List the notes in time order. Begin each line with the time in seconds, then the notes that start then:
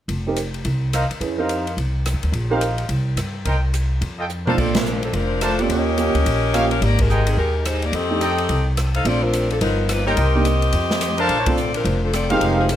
0.08 F1, ride
0.27 C4 D#4 G4 A#4
0.36 hi-hat pedal, ride
0.54 ride
0.65 C2, ride
0.93 D#4 A#4 C5 F5, cross-stick, hi-hat pedal, ride
1.11 muted upright bass stroke, ride
1.20 F2 C#4 E4 G#4 B4, ride
1.38 C4 D#4 G4 A#4 C5 F5
1.49 hi-hat pedal, ride
1.67 ride
1.77 C2, ride
2.06 cross-stick, hi-hat pedal, ride
2.13 F2
2.23 D#2, ride
2.32 A#1, ride
2.50 C4 D#4 G4 A#4 C5 F5
2.61 hi-hat pedal, ride
2.78 ride
2.89 C2, ride
3.16 G2, cross-stick, hi-hat pedal, ride
3.45 C2 D#4 A#4 C5 G5, ride
3.74 hi-hat pedal, ride
4.01 F2, ride
4.19 F4 A4 D#5 G5
4.29 hi-hat pedal
4.46 A#2 C4 D4 D#4 F4 A4 A#4 C5 F5 A5, mid tom
4.58 A#1 C4 F4 A4 D5, kick, crash
4.75 F3 C4 D4 A#4, snare, ride
4.86 hi-hat pedal
5.03 F3 C4 D4 A4, ride
5.13 F1 F3 C4 D4 A#4, ride
5.41 A3 D4 F4 A#4 C5 A5, cross-stick, hi-hat pedal, ride
5.59 A#3 C4 C#4 F4 G4 A4 D5, ride
5.69 D#2 C#4 G4 A#4 D#5, ride
5.98 A#3 C#4 F4 G4, hi-hat pedal, ride
6.15 D2, ride
6.26 A#1, ride
6.53 A#3 C#4 D#4 F4 G4 C#5 F5, cross-stick, hi-hat pedal, ride
6.71 C#4 G4 A#4 F5, ride
6.81 G#1 A#3 D#4 G4 D5, ride
6.99 G#3 D#4 G4 A#4, kick, ride
7.09 D#4 G#4 C5 G5, hi-hat pedal
7.27 D#3 G3 C4 G#4, ride
7.37 D#2 G#3 D#4 G4 A#4
7.65 G#3 D#4 G4 C5, cross-stick, hi-hat pedal, ride
7.82 A#3 D#4 G4 D5, ride
7.92 F2 C4 G4 A4 D#5, ride
8.10 A3 D4 D#4 G4
8.21 D#4 A4 D#5 G5, hi-hat pedal, ride
8.38 ride
8.49 C2, ride
8.77 cross-stick, hi-hat pedal, ride
8.94 D#4 A4 C5 F5, ride
9.05 A#1 A3 C4 D4 F4 A4 D5, ride
9.23 F3 C4 D4 A#4
9.33 hi-hat pedal, ride
9.51 F3 C4 D4 A4, ride
9.61 G1 F3 B3 D#4 A#4, ride
9.89 F3 A#3 D#4 B4, cross-stick, hi-hat pedal, ride
10.06 A#3 D#4 G4 A#4 C5 C#5 G5
10.16 C2 C4 G4 A#4 D#5, ride
10.35 A#3 D4 D#4 G4
10.45 hi-hat pedal, ride
10.62 ride
10.73 F2, ride
10.91 snare
11.01 cross-stick, hi-hat pedal, ride
11.18 D4 A4 A#4 C5 F5 A5, ride
11.29 A#1, ride
11.39 C#5
11.46 A3 C4 D4 F4 A4 D5, kick, ride
11.57 hi-hat pedal
11.74 F3 C4 D4 A#4, ride
11.85 F1, ride
12.02 F3 C4 D4 A4
12.13 C4 F4 A4 D5, cross-stick, hi-hat pedal, ride
12.30 G#3 C4 D#4 F4 G4 A#4 C5 F5, ride
12.41 F1, ride
12.60 F3 C4 D#4 G#4
12.69 G#3 D#4 F4 C5, hi-hat pedal, ride